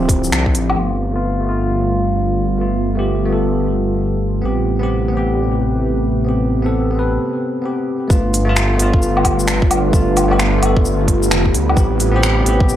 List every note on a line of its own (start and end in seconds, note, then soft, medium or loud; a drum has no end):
0.00 0.31 D1 medium
0.00 0.73 D3 medium
0.00 0.74 F3 medium
0.00 0.80 F3 loud
0.00 0.73 C4 medium
0.00 0.79 C4 medium
0.00 0.79 E4 medium
0.00 0.79 F4 loud
0.00 0.78 G4 loud
0.09 kick loud
0.09 open hi-hat medium
0.24 shaker medium
0.32 0.56 C2 medium
0.32 finger snap loud
0.32 shaker medium
0.46 kick medium
0.55 0.76 A1 medium
0.55 open hi-hat medium
0.55 shaker soft
0.70 low woodblock medium
0.75 4.42 G1 medium
0.75 4.40 D3 medium
0.75 4.40 G3 medium
0.75 1.10 A3 medium
0.75 4.40 B3 medium
0.75 1.12 B3 medium
0.75 4.40 F4 medium
0.75 1.12 F4 medium
1.12 1.39 A3 medium
1.12 1.44 B3 medium
1.12 1.45 F4 medium
1.40 2.56 A3 medium
1.45 2.58 B3 medium
1.45 2.60 F4 medium
2.58 2.94 A3 medium
2.58 2.94 B3 medium
2.58 2.95 F4 medium
2.95 3.24 A3 medium
2.95 3.27 B3 medium
2.95 3.28 G4 medium
3.25 4.40 A3 medium
3.29 4.40 B3 medium
3.29 4.44 A4 medium
4.42 7.19 A1 medium
4.42 7.16 C3 medium
4.42 7.16 A3 medium
4.42 4.77 B3 medium
4.42 4.78 C4 medium
4.42 7.16 G4 medium
4.42 4.79 G4 medium
4.42 7.16 B4 medium
4.79 5.07 B3 medium
4.79 5.11 C4 medium
4.79 5.12 G4 medium
5.09 6.23 B3 medium
5.13 6.25 C4 medium
5.13 6.27 G4 medium
6.24 6.60 B3 medium
6.24 6.61 C4 medium
6.29 6.62 G4 medium
6.62 6.90 B3 medium
6.62 6.94 C4 medium
6.62 6.95 A4 loud
6.91 7.61 B3 medium
6.91 7.63 C4 medium
6.99 7.65 B4 medium
7.62 8.07 B3 medium
7.62 8.08 C4 medium
7.62 8.09 G4 medium
8.08 8.78 G1 loud
8.08 11.73 D3 medium
8.08 11.73 G3 medium
8.08 8.43 A3 medium
8.08 8.44 B3 medium
8.08 11.73 F4 medium
8.08 8.45 F4 medium
8.08 12.76 B4 medium
8.08 kick loud
8.08 shaker medium
8.34 open hi-hat medium
8.34 shaker medium
8.45 8.73 A3 medium
8.45 8.77 B3 medium
8.49 8.78 F4 loud
8.56 finger snap loud
8.56 shaker medium
8.74 9.89 A3 medium
8.78 9.92 G1 loud
8.78 9.91 B3 medium
8.78 9.93 F4 medium
8.78 open hi-hat medium
8.94 kick loud
9.02 shaker medium
9.17 low woodblock medium
9.25 kick medium
9.25 open hi-hat medium
9.25 low woodblock medium
9.39 shaker medium
9.48 finger snap loud
9.48 shaker medium
9.62 kick loud
9.71 open hi-hat medium
9.71 low woodblock medium
9.71 shaker soft
9.91 10.61 G1 loud
9.91 10.26 A3 medium
9.91 10.27 B3 medium
9.91 kick loud
9.91 shaker medium
9.95 10.28 F4 medium
10.17 open hi-hat medium
10.17 low woodblock medium
10.17 shaker medium
10.28 10.57 A3 medium
10.28 10.60 B3 medium
10.28 low woodblock medium
10.33 10.61 G4 loud
10.39 finger snap loud
10.39 shaker medium
10.58 11.73 A3 medium
10.58 11.73 B3 medium
10.63 11.31 G1 medium
10.63 11.77 A4 loud
10.63 open hi-hat medium
10.63 low woodblock medium
10.77 kick loud
10.85 shaker medium
11.08 kick medium
11.08 open hi-hat medium
11.23 shaker medium
11.31 11.56 F1 medium
11.31 finger snap loud
11.31 shaker medium
11.46 kick medium
11.54 11.76 D2 loud
11.54 open hi-hat medium
11.54 shaker soft
11.69 low woodblock medium
11.74 12.44 A1 loud
11.74 12.76 C3 medium
11.74 12.76 A3 medium
11.74 12.10 B3 medium
11.74 12.11 C4 medium
11.74 12.76 G4 medium
11.74 kick loud
11.74 shaker medium
11.79 12.12 G4 medium
12.00 open hi-hat medium
12.00 shaker medium
12.12 12.39 B3 loud
12.12 12.43 C4 medium
12.16 12.44 G4 loud
12.23 finger snap loud
12.23 shaker medium
12.40 12.76 B3 medium
12.45 12.76 A1 medium
12.45 12.76 C4 medium
12.45 12.76 G4 loud
12.45 open hi-hat medium
12.60 kick loud
12.69 shaker medium